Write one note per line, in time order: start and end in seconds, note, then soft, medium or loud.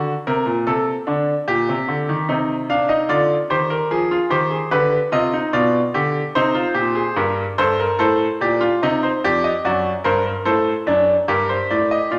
0.00 0.11 D3 medium
0.00 0.11 F#4 medium
0.27 0.46 C3 medium
0.27 0.52 A#4 medium
0.46 0.66 A#2 medium
0.67 0.92 C3 medium
0.67 0.92 A4 medium
1.07 1.32 D3 medium
1.07 1.32 D4 medium
1.48 1.67 A#2 medium
1.48 2.25 G4 medium
1.69 1.88 C3 medium
1.88 2.07 D3 medium
2.09 2.28 D#3 medium
2.29 3.07 C3 medium
2.29 2.53 D#4 medium
2.69 2.88 D4 medium
2.69 2.88 F5 medium
2.89 3.08 D#4 medium
2.89 3.08 D#5 medium
3.09 3.34 D3 medium
3.09 3.34 F4 medium
3.09 3.34 D5 medium
3.50 3.75 D#3 medium
3.50 3.75 G4 medium
3.50 3.69 C5 medium
3.70 3.89 A#4 medium
3.91 4.15 F3 medium
3.91 4.16 G#4 medium
4.11 4.30 F4 medium
4.30 4.55 D#3 medium
4.30 4.50 G4 medium
4.30 4.55 C5 medium
4.51 4.70 G#4 medium
4.71 4.97 D3 medium
4.71 4.96 G4 medium
4.71 4.96 B4 medium
5.12 5.38 C3 medium
5.12 5.31 F4 medium
5.12 5.38 D#5 medium
5.33 5.53 D#4 medium
5.53 5.79 B2 medium
5.53 5.78 F4 medium
5.53 5.79 D5 medium
5.94 6.19 D3 medium
5.94 6.20 G4 medium
6.35 6.61 C3 medium
6.35 6.55 D#4 medium
6.35 7.14 C5 medium
6.54 6.74 F4 medium
6.74 7.00 A#2 medium
6.74 6.95 G4 medium
6.95 7.15 G#4 medium
7.16 7.42 G2 medium
7.16 7.42 G4 medium
7.16 7.42 A#4 medium
7.58 7.84 G2 medium
7.58 7.78 A4 medium
7.58 7.78 C5 medium
7.80 7.99 A#4 medium
7.99 8.25 A2 medium
7.99 8.25 A4 medium
7.99 8.25 C5 medium
8.41 8.66 A#2 medium
8.41 8.61 G4 medium
8.41 8.66 D5 medium
8.61 8.81 F4 medium
8.83 9.08 C3 medium
8.83 9.08 D#4 medium
8.83 9.02 D#5 medium
9.03 9.22 C5 medium
9.24 9.49 F2 medium
9.24 9.49 G4 medium
9.24 9.43 D5 medium
9.44 9.64 D#5 medium
9.65 9.90 F#2 medium
9.65 9.90 F#4 medium
9.65 9.90 D5 medium
10.04 10.30 G2 medium
10.04 10.24 A#4 medium
10.04 10.25 C5 medium
10.26 10.46 A#4 medium
10.45 10.71 A2 medium
10.45 10.71 A4 medium
10.45 10.71 C5 medium
10.87 11.12 F#2 medium
10.87 11.13 D4 medium
10.87 11.13 D5 medium
11.28 11.54 G2 medium
11.28 12.09 G4 medium
11.28 11.48 A#4 medium
11.49 11.69 C5 medium
11.71 11.96 A2 medium
11.71 11.90 D5 medium
11.91 12.11 D#5 medium
12.11 12.19 A#2 medium
12.11 12.19 F4 medium
12.11 12.19 D5 medium